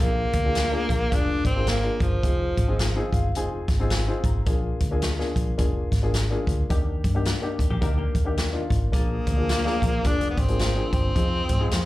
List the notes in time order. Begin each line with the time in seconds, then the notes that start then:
0.00 A#1 A#3 D4 F4 G#4, kick
0.33 D2, kick, closed hi-hat
0.45 A#3 D4 F4 G#4
0.55 snare, closed hi-hat
0.72 A#3 D4 F4 G#4
0.89 A#1, kick, closed hi-hat
1.12 F1 A#3 D4 F4 G#4, kick, closed hi-hat
1.45 G#1 C4, kick, closed hi-hat
1.56 A#3 D4 F4 G#4
1.67 A#3, snare, closed hi-hat
1.84 A#3 D4 F4 G#4
2.00 G1 F3, kick, closed hi-hat
2.23 F1 C4 D#4 F4 G#4, kick, closed hi-hat
2.57 G#1, kick, closed hi-hat
2.68 C4 D#4 F4 G#4
2.79 snare, closed hi-hat
2.96 C4 D#4 F4 G#4
3.12 G1 F5, kick, closed hi-hat
3.34 F1 C4 D#4 F4 G#4 G#5, closed hi-hat
3.68 G#1, kick, snare, closed hi-hat
3.80 C4 D#4 F4 G#4
3.90 G#5, snare, closed hi-hat
4.08 C4 D#4 F4 G#4
4.24 G#1 A#5, kick, closed hi-hat
4.46 A#1 A#3 D4 F4 G#4, kick, closed hi-hat
4.80 D2, kick, closed hi-hat
4.91 A#3 D4 F4 G#4
5.02 snare, closed hi-hat
5.19 A#3 D4 F4 G#4, snare
5.36 A#1, kick, closed hi-hat
5.58 F1 A#3 D4 F4 G#4, kick, closed hi-hat
5.92 G#1, kick, snare, closed hi-hat
6.02 A#3 D4 F4 G#4
6.14 snare, closed hi-hat
6.31 A#3 D4 F4 G#4
6.47 D2, kick, closed hi-hat
6.69 D#2 A#3 D4 D#4 G4, kick, closed hi-hat
7.04 G2, kick, closed hi-hat
7.15 A#3 D4 D#4 G4
7.25 snare, closed hi-hat
7.42 A#3 D4 D#4 G4
7.59 D#2, kick, closed hi-hat
7.70 A#1 A#3 G4
7.81 D2 A#3 D4 D#4 G4 A#4, kick, closed hi-hat
7.98 A#3 G4
8.15 D#2, kick, closed hi-hat
8.25 A#3 D4 D#4 G4
8.37 snare, closed hi-hat
8.53 A#3 D4 D#4 F4
8.70 G#1, kick, closed hi-hat
8.92 A#1 F3 A#3 D4 F4 G#4, kick, closed hi-hat
9.27 D2, kick, closed hi-hat
9.37 A#3 D4 F4 G#4
9.49 snare, closed hi-hat
9.65 A#3 D4 F4 G#4, snare
9.82 A#1, kick, closed hi-hat
10.04 F1 A#3 D4 F4 G#4, kick, closed hi-hat
10.21 closed hi-hat
10.30 B3
10.37 G#1 C4, kick, closed hi-hat
10.48 A#3 D4 F4 G#4, closed hi-hat
10.59 snare, closed hi-hat
10.76 A#3 D4 F4 G#4
10.92 G1 C4, kick, closed hi-hat
11.15 F2 F3 C4 D#4 F4 G#4, kick, closed hi-hat
11.49 G#2, kick, closed hi-hat
11.59 C4 D#4 F4 G#4
11.71 F2, snare, closed hi-hat